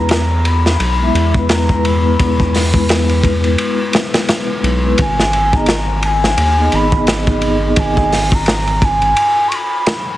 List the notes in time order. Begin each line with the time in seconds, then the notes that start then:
Already playing: E2 G#3 B3 E4 A#5
0.00 B4
0.09 snare, ride
0.45 B5, ride
0.66 snare
0.80 B1, ride
0.99 G#3 B3 E4 E5
1.14 E2, ride
1.34 G#3 B3 E4 B4, kick
1.49 A#5, snare, ride
1.67 G#3 B3, kick
1.72 E4 B4
1.85 B5, ride
2.19 E2, kick, ride
2.40 kick
2.55 snare, open hi-hat
2.72 G#3 B3, kick
2.77 E4 B4
2.89 snare, ride
3.09 ride
3.23 kick, ride
3.44 ride
3.58 ride
3.93 snare, ride
4.14 snare, ride
4.29 snare, ride
4.63 B1, ride
4.83 G#3 B3 E4 B4
4.98 G#1 G#5, kick, ride
5.20 snare
5.33 ride
5.53 B3 D#4 G#4 D#5 A#5, kick
5.66 snare, ride
6.03 G#5, ride
6.24 snare
6.37 D#2, ride
6.58 B3 D#4 G#4 D#5
6.72 G#1 B5, ride
6.92 D#4 G#4 D#5, kick
7.07 snare, ride
7.25 B3 D#4, kick
7.30 G#4 D#5
7.42 ride
7.76 G#1 G#5, kick, ride
7.97 kick
8.12 snare, open hi-hat
8.32 A#5, kick
8.46 snare, ride
8.67 ride
8.82 G#5, kick, ride
9.02 ride
9.16 ride
9.48 C#6, ride
9.55 B5
9.86 snare, ride